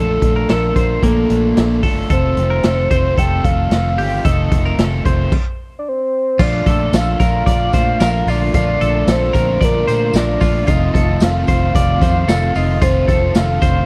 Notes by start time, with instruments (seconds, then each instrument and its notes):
Already playing: fingered electric bass A#1, overdriven electric guitar A#2 F3 A3 D4, clean electric guitar A4, soft synth lead A4
0.00 overdriven electric guitar F4
0.22 fingered electric bass A#1, overdriven electric guitar A3 D4 F4, kick, closed hi-hat
0.36 clean electric guitar A#4
0.49 fingered electric bass A#1, overdriven electric guitar F3 A3 D4 F4, clean electric guitar A4, soft synth lead A#4, snare, closed hi-hat
0.75 fingered electric bass A#1, overdriven electric guitar A3 D4 F4, clean electric guitar C5, kick, closed hi-hat
1.03 fingered electric bass A#1, overdriven electric guitar A#2 F3 A3 D4 F4, clean electric guitar A#3, soft synth lead A4, kick, closed hi-hat
1.29 fingered electric bass A#1, overdriven electric guitar A3 D4 F4, closed hi-hat
1.57 fingered electric bass A#1, overdriven electric guitar F3 A3 D4 F4, snare, closed hi-hat
1.83 fingered electric bass G1, overdriven electric guitar A3 D4 F4, clean electric guitar A4, kick, open hi-hat
2.10 fingered electric bass F1, overdriven electric guitar F2 C3 D#3 A3 C4 F4, clean electric guitar A4, soft synth lead C5, kick, closed hi-hat
2.37 fingered electric bass F1, overdriven electric guitar D#3 A3 C4 F4, closed hi-hat
2.50 clean electric guitar A#4
2.63 fingered electric bass F1, overdriven electric guitar D#3 A3 C4 F4, clean electric guitar A4, snare, closed hi-hat
2.91 fingered electric bass F1, overdriven electric guitar D#3 A3 C4 F4, clean electric guitar C5, kick, closed hi-hat
3.18 fingered electric bass F1, overdriven electric guitar F2 C3 D#3 A3 C4 F4, clean electric guitar A4, soft synth lead G5, kick, closed hi-hat
3.44 fingered electric bass F1, overdriven electric guitar D#3 A3 C4 F4, soft synth lead F5, kick, closed hi-hat
3.71 fingered electric bass F1, overdriven electric guitar D#3 A3 C4 F4, snare, closed hi-hat
3.98 fingered electric bass G1, overdriven electric guitar A3 C4 F4, clean electric guitar G4, open hi-hat
4.02 overdriven electric guitar D#3
4.25 fingered electric bass F1, overdriven electric guitar F2 C3 D#3 A3 C4 F4, clean electric guitar A4, soft synth lead D#5, kick, closed hi-hat
4.52 fingered electric bass F1, overdriven electric guitar D#3 A3 C4 F4, kick, closed hi-hat
4.66 clean electric guitar A#4
4.78 fingered electric bass F1, overdriven electric guitar D#3 A3 C4 F4, clean electric guitar A4, snare, closed hi-hat
5.05 fingered electric bass F1, overdriven electric guitar D#3 A3 C4 F4, clean electric guitar C5, kick, closed hi-hat
5.32 kick, crash
5.79 soft synth lead D5
5.88 soft synth lead C5
6.39 fingered electric bass A#1, overdriven electric guitar A#2 F3 A3 D4 F4, string section D3 F3 A#3 F4, clean electric guitar F4, soft synth lead D5, kick, crash, tambourine
6.66 fingered electric bass A#1, overdriven electric guitar A3 D4 F4, clean electric guitar A4, kick, closed hi-hat, tambourine
6.93 fingered electric bass A#1, overdriven electric guitar F3 A3 D4 F4, soft synth lead F5, snare, closed hi-hat, tambourine
7.20 fingered electric bass A#1, overdriven electric guitar A3 D4 F4, clean electric guitar A#4, soft synth lead F5, kick, closed hi-hat, tambourine
7.46 fingered electric bass A#1, overdriven electric guitar A#2 F3 A3 D4 F4, clean electric guitar D5, kick, closed hi-hat, tambourine
7.73 fingered electric bass A#2, overdriven electric guitar A3 D4 F4, clean electric guitar C5, kick, closed hi-hat, tambourine
8.00 fingered electric bass A#1, overdriven electric guitar F3 A3 D4 F4, clean electric guitar A#4, snare, closed hi-hat, tambourine
8.27 fingered electric bass A#1, overdriven electric guitar A3 D4 F4, clean electric guitar F4, soft synth lead D5, open hi-hat, tambourine
8.54 fingered electric bass A#1, overdriven electric guitar A#2 F3 A3 D4 F4, clean electric guitar F4, soft synth lead D5, kick, closed hi-hat, tambourine
8.81 fingered electric bass A#1, overdriven electric guitar A3 D4 F4, clean electric guitar A4, closed hi-hat, tambourine
9.07 fingered electric bass A#1, overdriven electric guitar F3 A3 D4 F4, soft synth lead C5, snare, closed hi-hat, tambourine
9.33 fingered electric bass A#1, overdriven electric guitar A3 D4 F4, clean electric guitar A#4, kick, closed hi-hat, tambourine
9.60 fingered electric bass A#1, overdriven electric guitar A#2 F3 A3 D4 F4, soft synth lead A#4, clean electric guitar D5, kick, closed hi-hat
9.87 fingered electric bass A#2, overdriven electric guitar A3 D4 F4, clean electric guitar C5, closed hi-hat, tambourine
10.14 fingered electric bass A#1, overdriven electric guitar F3 A3 D4 F4, clean electric guitar A#4, soft synth lead D5, snare, closed hi-hat, tambourine
10.40 fingered electric bass A#1, overdriven electric guitar A3 D4 F4, clean electric guitar F4, kick, open hi-hat, tambourine
10.67 fingered electric bass F1, overdriven electric guitar F2 C3 D#3 A3 C4 F4, string section D#3 C4, clean electric guitar F4, soft synth lead D#5, kick, closed hi-hat, tambourine
10.93 fingered electric bass F1, overdriven electric guitar D#3 A3 C4 F4, clean electric guitar A4, kick, closed hi-hat
11.20 fingered electric bass F1, overdriven electric guitar D#3 A3 C4 F4, soft synth lead F5, snare, closed hi-hat, tambourine
11.47 fingered electric bass F1, overdriven electric guitar D#3 A3 C4 F4, clean electric guitar C5, soft synth lead F5, kick, closed hi-hat, tambourine
11.75 fingered electric bass F1, overdriven electric guitar F2 C3 D#3 A3 C4 F4, clean electric guitar D5, kick, closed hi-hat, tambourine
12.00 fingered electric bass F2, overdriven electric guitar D#3 A3 C4 F4, clean electric guitar C5, kick, closed hi-hat, tambourine
12.26 fingered electric bass F1, overdriven electric guitar D#3 A3 C4 F4, clean electric guitar A4, snare, closed hi-hat, tambourine
12.53 fingered electric bass F1, overdriven electric guitar D#3 A3 C4 F4, clean electric guitar F4, soft synth lead D#5, open hi-hat, tambourine
12.80 fingered electric bass F1, overdriven electric guitar F2 C3 D#3 A3 C4 F4, string section D3, clean electric guitar F4, soft synth lead C5, kick, closed hi-hat, tambourine
13.07 fingered electric bass F1, overdriven electric guitar D#3 A3 C4 F4, clean electric guitar A4, kick, closed hi-hat
13.35 fingered electric bass F1, overdriven electric guitar D#3 A3 C4 F4, soft synth lead F5, snare, closed hi-hat, tambourine
13.61 fingered electric bass F1, overdriven electric guitar D#3 A3 C4 F4, clean electric guitar C5, kick, closed hi-hat, tambourine